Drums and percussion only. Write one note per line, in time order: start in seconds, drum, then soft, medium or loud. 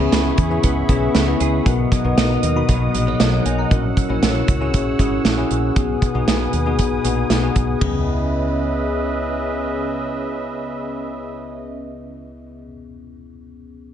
0.12 snare loud
0.12 closed hi-hat medium
0.38 kick medium
0.38 closed hi-hat medium
0.63 kick medium
0.63 closed hi-hat medium
0.89 kick medium
0.89 closed hi-hat medium
1.15 snare medium
1.15 closed hi-hat medium
1.40 closed hi-hat medium
1.66 kick loud
1.66 closed hi-hat medium
1.92 kick medium
1.92 closed hi-hat medium
2.18 snare loud
2.18 closed hi-hat medium
2.43 closed hi-hat medium
2.69 kick medium
2.69 closed hi-hat medium
2.95 closed hi-hat medium
3.20 snare medium
3.20 closed hi-hat medium
3.46 closed hi-hat medium
3.71 kick loud
3.71 closed hi-hat medium
3.97 kick medium
3.97 closed hi-hat medium
4.23 snare loud
4.23 closed hi-hat medium
4.48 kick medium
4.48 closed hi-hat medium
4.74 kick medium
4.74 closed hi-hat medium
4.99 kick medium
4.99 closed hi-hat medium
5.25 snare medium
5.25 closed hi-hat medium
5.51 closed hi-hat medium
5.76 kick loud
5.76 closed hi-hat medium
6.02 kick medium
6.02 closed hi-hat medium
6.28 snare loud
6.28 closed hi-hat medium
6.53 closed hi-hat medium
6.79 kick medium
6.79 closed hi-hat medium
7.05 closed hi-hat medium
7.30 snare medium
7.30 closed hi-hat medium
7.56 kick medium
7.56 closed hi-hat medium
7.81 kick medium
7.81 floor tom medium
7.81 ride bell medium